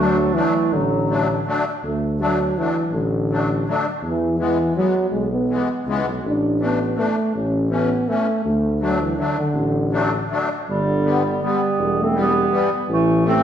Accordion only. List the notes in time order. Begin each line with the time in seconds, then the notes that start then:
0.00 F#3 A3 D4
0.35 F#3 A3 D4
1.09 F#3 A3 D4
1.46 F#3 A3 D4
2.20 F#3 A3 D4
2.58 F#3 A3 D4
3.30 F#3 A3 D4
3.67 F#3 A3 D4
4.39 E3 G#3 B3
4.76 E3 G#3 B3
5.49 E3 G#3 B3
5.87 E3 G#3 B3
6.60 E3 A3 D4
6.95 E3 A3 D4
7.70 E3 A3 C#4
8.08 E3 A3 C#4
8.80 F#3 A3 D4
9.18 F#3 A3 D4
9.91 F#3 A3 D4
10.30 F#3 A3 D4
11.03 D3 G3 B3
11.43 D3 G3 B3
12.14 E3 G3 B3
12.51 E3 G3 B3
13.25 E3 A3 C4